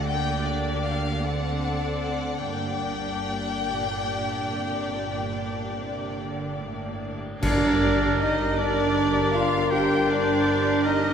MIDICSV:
0, 0, Header, 1, 12, 480
1, 0, Start_track
1, 0, Key_signature, -2, "minor"
1, 0, Tempo, 775194
1, 996, Tempo, 836820
1, 1471, Time_signature, 12, 3, 24, 8
1, 2916, Tempo, 820793
1, 4356, Tempo, 771208
1, 5316, Tempo, 750000
1, 6708, End_track
2, 0, Start_track
2, 0, Title_t, "Violin section"
2, 0, Program_c, 0, 48
2, 45, Note_on_c, 0, 79, 59
2, 271, Note_off_c, 0, 79, 0
2, 275, Note_on_c, 0, 74, 49
2, 511, Note_off_c, 0, 74, 0
2, 512, Note_on_c, 0, 77, 51
2, 751, Note_off_c, 0, 77, 0
2, 752, Note_on_c, 0, 78, 45
2, 1217, Note_off_c, 0, 78, 0
2, 1224, Note_on_c, 0, 78, 50
2, 1457, Note_on_c, 0, 79, 56
2, 1462, Note_off_c, 0, 78, 0
2, 3625, Note_off_c, 0, 79, 0
2, 4353, Note_on_c, 0, 70, 59
2, 5052, Note_off_c, 0, 70, 0
2, 5077, Note_on_c, 0, 70, 62
2, 5780, Note_off_c, 0, 70, 0
2, 5812, Note_on_c, 0, 70, 68
2, 6708, Note_off_c, 0, 70, 0
2, 6708, End_track
3, 0, Start_track
3, 0, Title_t, "Flute section"
3, 0, Program_c, 1, 73
3, 4360, Note_on_c, 1, 74, 71
3, 4816, Note_off_c, 1, 74, 0
3, 4850, Note_on_c, 1, 75, 68
3, 5083, Note_off_c, 1, 75, 0
3, 5086, Note_on_c, 1, 74, 66
3, 5562, Note_off_c, 1, 74, 0
3, 5562, Note_on_c, 1, 77, 69
3, 5798, Note_off_c, 1, 77, 0
3, 5800, Note_on_c, 1, 79, 59
3, 6030, Note_off_c, 1, 79, 0
3, 6046, Note_on_c, 1, 74, 70
3, 6521, Note_off_c, 1, 74, 0
3, 6522, Note_on_c, 1, 75, 66
3, 6708, Note_off_c, 1, 75, 0
3, 6708, End_track
4, 0, Start_track
4, 0, Title_t, "Violin section"
4, 0, Program_c, 2, 48
4, 26, Note_on_c, 2, 67, 43
4, 27, Note_on_c, 2, 74, 45
4, 730, Note_off_c, 2, 67, 0
4, 739, Note_off_c, 2, 74, 0
4, 746, Note_on_c, 2, 69, 41
4, 747, Note_on_c, 2, 74, 42
4, 1455, Note_off_c, 2, 74, 0
4, 1469, Note_off_c, 2, 69, 0
4, 1470, Note_on_c, 2, 74, 41
4, 1473, Note_on_c, 2, 67, 38
4, 4208, Note_off_c, 2, 74, 0
4, 4233, Note_off_c, 2, 67, 0
4, 4355, Note_on_c, 2, 74, 67
4, 4813, Note_off_c, 2, 74, 0
4, 4843, Note_on_c, 2, 75, 61
4, 5080, Note_off_c, 2, 75, 0
4, 5081, Note_on_c, 2, 74, 74
4, 5559, Note_off_c, 2, 74, 0
4, 5562, Note_on_c, 2, 77, 70
4, 5798, Note_off_c, 2, 77, 0
4, 5803, Note_on_c, 2, 79, 64
4, 6031, Note_off_c, 2, 79, 0
4, 6044, Note_on_c, 2, 74, 71
4, 6519, Note_on_c, 2, 75, 66
4, 6520, Note_off_c, 2, 74, 0
4, 6708, Note_off_c, 2, 75, 0
4, 6708, End_track
5, 0, Start_track
5, 0, Title_t, "Oboe"
5, 0, Program_c, 3, 68
5, 4364, Note_on_c, 3, 70, 70
5, 5057, Note_off_c, 3, 70, 0
5, 5085, Note_on_c, 3, 74, 69
5, 5791, Note_on_c, 3, 72, 66
5, 5800, Note_off_c, 3, 74, 0
5, 6511, Note_off_c, 3, 72, 0
5, 6517, Note_on_c, 3, 70, 68
5, 6708, Note_off_c, 3, 70, 0
5, 6708, End_track
6, 0, Start_track
6, 0, Title_t, "French horn section"
6, 0, Program_c, 4, 60
6, 4367, Note_on_c, 4, 62, 64
6, 4372, Note_on_c, 4, 70, 68
6, 6708, Note_off_c, 4, 62, 0
6, 6708, Note_off_c, 4, 70, 0
6, 6708, End_track
7, 0, Start_track
7, 0, Title_t, "Clarinet"
7, 0, Program_c, 5, 71
7, 4356, Note_on_c, 5, 62, 81
7, 4814, Note_off_c, 5, 62, 0
7, 4855, Note_on_c, 5, 63, 73
7, 5087, Note_on_c, 5, 62, 75
7, 5096, Note_off_c, 5, 63, 0
7, 5561, Note_off_c, 5, 62, 0
7, 5565, Note_on_c, 5, 65, 77
7, 5804, Note_on_c, 5, 67, 73
7, 5813, Note_off_c, 5, 65, 0
7, 6036, Note_off_c, 5, 67, 0
7, 6046, Note_on_c, 5, 62, 72
7, 6534, Note_on_c, 5, 63, 81
7, 6544, Note_off_c, 5, 62, 0
7, 6708, Note_off_c, 5, 63, 0
7, 6708, End_track
8, 0, Start_track
8, 0, Title_t, "Viola section"
8, 0, Program_c, 6, 48
8, 37, Note_on_c, 6, 62, 39
8, 40, Note_on_c, 6, 58, 38
8, 736, Note_off_c, 6, 62, 0
8, 747, Note_on_c, 6, 60, 42
8, 751, Note_on_c, 6, 62, 40
8, 752, Note_off_c, 6, 58, 0
8, 1457, Note_off_c, 6, 62, 0
8, 1470, Note_off_c, 6, 60, 0
8, 1476, Note_on_c, 6, 58, 37
8, 1478, Note_on_c, 6, 62, 37
8, 4211, Note_off_c, 6, 58, 0
8, 4212, Note_off_c, 6, 62, 0
8, 4356, Note_on_c, 6, 62, 60
8, 4360, Note_on_c, 6, 67, 55
8, 5053, Note_off_c, 6, 62, 0
8, 5055, Note_off_c, 6, 67, 0
8, 5088, Note_on_c, 6, 62, 61
8, 5088, Note_on_c, 6, 67, 61
8, 5787, Note_off_c, 6, 62, 0
8, 5787, Note_off_c, 6, 67, 0
8, 5801, Note_on_c, 6, 67, 58
8, 5803, Note_on_c, 6, 62, 61
8, 6708, Note_off_c, 6, 62, 0
8, 6708, Note_off_c, 6, 67, 0
8, 6708, End_track
9, 0, Start_track
9, 0, Title_t, "Cello section"
9, 0, Program_c, 7, 48
9, 0, Note_on_c, 7, 50, 50
9, 1449, Note_off_c, 7, 50, 0
9, 1461, Note_on_c, 7, 43, 41
9, 2144, Note_off_c, 7, 43, 0
9, 2190, Note_on_c, 7, 46, 43
9, 2649, Note_off_c, 7, 46, 0
9, 2669, Note_on_c, 7, 48, 44
9, 2908, Note_on_c, 7, 46, 40
9, 2911, Note_off_c, 7, 48, 0
9, 3391, Note_off_c, 7, 46, 0
9, 3391, Note_on_c, 7, 48, 42
9, 3631, Note_off_c, 7, 48, 0
9, 3631, Note_on_c, 7, 50, 48
9, 3868, Note_off_c, 7, 50, 0
9, 3871, Note_on_c, 7, 45, 40
9, 4355, Note_off_c, 7, 45, 0
9, 4359, Note_on_c, 7, 43, 64
9, 6708, Note_off_c, 7, 43, 0
9, 6708, End_track
10, 0, Start_track
10, 0, Title_t, "Timpani"
10, 0, Program_c, 8, 47
10, 4359, Note_on_c, 8, 43, 86
10, 5054, Note_off_c, 8, 43, 0
10, 6708, End_track
11, 0, Start_track
11, 0, Title_t, "Double bass section"
11, 0, Program_c, 10, 48
11, 0, Note_on_c, 10, 38, 47
11, 1448, Note_off_c, 10, 38, 0
11, 1460, Note_on_c, 10, 31, 39
11, 4226, Note_off_c, 10, 31, 0
11, 4352, Note_on_c, 10, 31, 65
11, 6708, Note_off_c, 10, 31, 0
11, 6708, End_track
12, 0, Start_track
12, 0, Title_t, "Drums"
12, 4361, Note_on_c, 9, 35, 69
12, 4361, Note_on_c, 9, 49, 70
12, 4423, Note_off_c, 9, 35, 0
12, 4423, Note_off_c, 9, 49, 0
12, 6708, End_track
0, 0, End_of_file